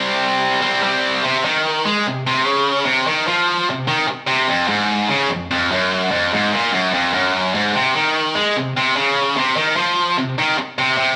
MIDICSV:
0, 0, Header, 1, 3, 480
1, 0, Start_track
1, 0, Key_signature, -3, "minor"
1, 0, Tempo, 406229
1, 1464, Time_signature, 4, 2, 24, 8
1, 13185, End_track
2, 0, Start_track
2, 0, Title_t, "Distorted electric guitar"
2, 0, Program_c, 0, 30
2, 0, Note_on_c, 0, 48, 98
2, 0, Note_on_c, 0, 55, 94
2, 0, Note_on_c, 0, 60, 112
2, 706, Note_off_c, 0, 60, 0
2, 720, Note_off_c, 0, 55, 0
2, 720, Note_on_c, 0, 60, 85
2, 724, Note_off_c, 0, 48, 0
2, 734, Note_on_c, 0, 55, 69
2, 753, Note_on_c, 0, 48, 63
2, 943, Note_off_c, 0, 48, 0
2, 957, Note_off_c, 0, 60, 0
2, 958, Note_off_c, 0, 55, 0
2, 958, Note_on_c, 0, 48, 76
2, 972, Note_on_c, 0, 55, 87
2, 984, Note_on_c, 0, 60, 86
2, 1437, Note_off_c, 0, 48, 0
2, 1444, Note_off_c, 0, 55, 0
2, 1450, Note_off_c, 0, 60, 0
2, 1459, Note_on_c, 0, 48, 100
2, 1695, Note_off_c, 0, 48, 0
2, 1710, Note_on_c, 0, 51, 97
2, 2182, Note_off_c, 0, 51, 0
2, 2187, Note_on_c, 0, 56, 109
2, 2420, Note_off_c, 0, 56, 0
2, 2441, Note_on_c, 0, 48, 73
2, 2627, Note_off_c, 0, 48, 0
2, 2678, Note_on_c, 0, 48, 100
2, 2901, Note_off_c, 0, 48, 0
2, 2901, Note_on_c, 0, 49, 107
2, 3365, Note_off_c, 0, 49, 0
2, 3370, Note_on_c, 0, 48, 99
2, 3614, Note_off_c, 0, 48, 0
2, 3627, Note_on_c, 0, 51, 99
2, 3861, Note_off_c, 0, 51, 0
2, 3866, Note_on_c, 0, 53, 111
2, 4344, Note_off_c, 0, 53, 0
2, 4370, Note_on_c, 0, 48, 67
2, 4555, Note_off_c, 0, 48, 0
2, 4579, Note_on_c, 0, 51, 106
2, 4820, Note_off_c, 0, 51, 0
2, 5051, Note_on_c, 0, 48, 111
2, 5296, Note_on_c, 0, 41, 100
2, 5297, Note_off_c, 0, 48, 0
2, 5523, Note_off_c, 0, 41, 0
2, 5527, Note_on_c, 0, 44, 109
2, 6013, Note_on_c, 0, 49, 91
2, 6016, Note_off_c, 0, 44, 0
2, 6259, Note_off_c, 0, 49, 0
2, 6259, Note_on_c, 0, 41, 69
2, 6462, Note_off_c, 0, 41, 0
2, 6509, Note_on_c, 0, 41, 109
2, 6746, Note_off_c, 0, 41, 0
2, 6750, Note_on_c, 0, 42, 112
2, 7213, Note_off_c, 0, 42, 0
2, 7218, Note_on_c, 0, 41, 106
2, 7462, Note_off_c, 0, 41, 0
2, 7485, Note_on_c, 0, 44, 101
2, 7712, Note_on_c, 0, 46, 116
2, 7715, Note_off_c, 0, 44, 0
2, 7937, Note_on_c, 0, 42, 94
2, 7949, Note_off_c, 0, 46, 0
2, 8181, Note_off_c, 0, 42, 0
2, 8198, Note_on_c, 0, 41, 91
2, 8428, Note_off_c, 0, 41, 0
2, 8433, Note_on_c, 0, 42, 95
2, 8906, Note_off_c, 0, 42, 0
2, 8911, Note_on_c, 0, 44, 107
2, 9146, Note_off_c, 0, 44, 0
2, 9160, Note_on_c, 0, 48, 101
2, 9390, Note_off_c, 0, 48, 0
2, 9402, Note_on_c, 0, 51, 106
2, 9864, Note_on_c, 0, 56, 109
2, 9870, Note_off_c, 0, 51, 0
2, 10101, Note_off_c, 0, 56, 0
2, 10122, Note_on_c, 0, 48, 70
2, 10309, Note_off_c, 0, 48, 0
2, 10362, Note_on_c, 0, 48, 100
2, 10586, Note_off_c, 0, 48, 0
2, 10591, Note_on_c, 0, 49, 113
2, 11061, Note_off_c, 0, 49, 0
2, 11077, Note_on_c, 0, 48, 107
2, 11304, Note_off_c, 0, 48, 0
2, 11309, Note_on_c, 0, 51, 102
2, 11533, Note_off_c, 0, 51, 0
2, 11538, Note_on_c, 0, 53, 117
2, 12012, Note_off_c, 0, 53, 0
2, 12033, Note_on_c, 0, 48, 76
2, 12219, Note_off_c, 0, 48, 0
2, 12271, Note_on_c, 0, 51, 96
2, 12497, Note_off_c, 0, 51, 0
2, 12744, Note_on_c, 0, 48, 99
2, 12952, Note_off_c, 0, 48, 0
2, 12966, Note_on_c, 0, 48, 119
2, 13185, Note_off_c, 0, 48, 0
2, 13185, End_track
3, 0, Start_track
3, 0, Title_t, "Muted distorted electric guitar strokes"
3, 4824, Note_on_c, 9, 29, 59
3, 4943, Note_off_c, 9, 29, 0
3, 12506, Note_on_c, 9, 29, 63
3, 12624, Note_off_c, 9, 29, 0
3, 13185, End_track
0, 0, End_of_file